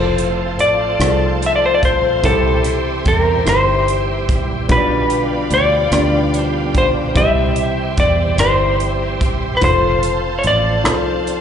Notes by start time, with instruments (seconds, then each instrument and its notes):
Already playing: fingered electric bass F1, tonewheel organ F3 A3 C4 A4, grand piano F4 A4 C5, electric slide guitar C5, string section C5 F5 A5 C6
0.18 closed hi-hat
0.59 fingered electric bass A1, electric slide guitar D5, closed hi-hat
0.99 fingered electric bass C2, grand piano F4 G#4 D5, cross-stick, closed hi-hat
1.07 grand piano A4
1.42 closed hi-hat
1.46 electric slide guitar E5
1.56 electric slide guitar D5
1.66 electric slide guitar C5
1.75 electric slide guitar D5
1.83 electric slide guitar C5, kick, closed hi-hat
2.23 fingered electric bass C2, grand piano C3 E4 G4 C5, tonewheel organ E3 G3 G4, electric slide guitar A4, string section E5 G5, kick, closed hi-hat
2.64 cross-stick, closed hi-hat
3.05 fingered electric bass E2, electric slide guitar A4, kick, closed hi-hat
3.19 electric slide guitar A#4
3.45 fingered electric bass G1, grand piano E4 G4 C5, electric slide guitar C5, cross-stick, closed hi-hat
3.88 closed hi-hat
4.29 kick, closed hi-hat
4.68 fingered electric bass B1, grand piano B2 B3 D4 F4 G4 C#5, tonewheel organ B2 D3 F4, electric slide guitar B4, string section D5 F5 G5 B5, kick, closed hi-hat
4.77 grand piano D5
5.10 closed hi-hat
5.50 fingered electric bass D2, electric slide guitar D5, closed hi-hat
5.91 fingered electric bass D2, grand piano B3 D4 F4 G4 D5, cross-stick, closed hi-hat
6.34 closed hi-hat
6.40 electric slide guitar C5
6.75 electric slide guitar C5, kick, closed hi-hat
7.14 fingered electric bass C2, grand piano C3 E4 G4 C5, tonewheel organ E3 C4 G4, string section C5 E5 C6, electric slide guitar E5, kick, closed hi-hat
7.56 closed hi-hat
7.97 fingered electric bass E2, electric slide guitar D5, kick, closed hi-hat
8.38 fingered electric bass G1, grand piano E4 G4 D5, electric slide guitar C5, cross-stick, closed hi-hat
8.80 closed hi-hat
9.21 kick, closed hi-hat
9.57 electric slide guitar B4, string section F5 A5
9.61 fingered electric bass F1, tonewheel organ F3 A4, grand piano F4 A4 C5, electric slide guitar C5, kick, closed hi-hat
10.03 closed hi-hat
10.39 electric slide guitar C#5
10.44 fingered electric bass A1, electric slide guitar D5, closed hi-hat
10.84 fingered electric bass C2, grand piano F4 A4 C5, cross-stick, closed hi-hat
11.27 closed hi-hat